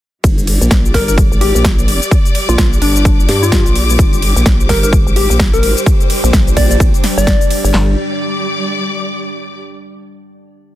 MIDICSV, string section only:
0, 0, Header, 1, 2, 480
1, 0, Start_track
1, 0, Key_signature, -2, "minor"
1, 0, Tempo, 468750
1, 245, Time_signature, 4, 2, 24, 8
1, 11009, End_track
2, 0, Start_track
2, 0, Title_t, "String section"
2, 0, Program_c, 0, 48
2, 246, Note_on_c, 0, 55, 75
2, 477, Note_on_c, 0, 74, 89
2, 575, Note_on_c, 0, 67, 84
2, 798, Note_on_c, 0, 86, 81
2, 4705, Note_on_c, 0, 72, 93
2, 4831, Note_off_c, 0, 74, 0
2, 7912, Note_off_c, 0, 55, 0
2, 7925, Note_off_c, 0, 67, 0
2, 7925, Note_off_c, 0, 72, 0
2, 7925, Note_off_c, 0, 86, 0
2, 7925, Note_on_c, 0, 55, 79
2, 8012, Note_on_c, 0, 67, 74
2, 8087, Note_on_c, 0, 74, 74
2, 8145, Note_on_c, 0, 86, 74
2, 9803, Note_off_c, 0, 74, 0
2, 9803, Note_off_c, 0, 86, 0
2, 9804, Note_off_c, 0, 55, 0
2, 9804, Note_off_c, 0, 67, 0
2, 11009, End_track
0, 0, End_of_file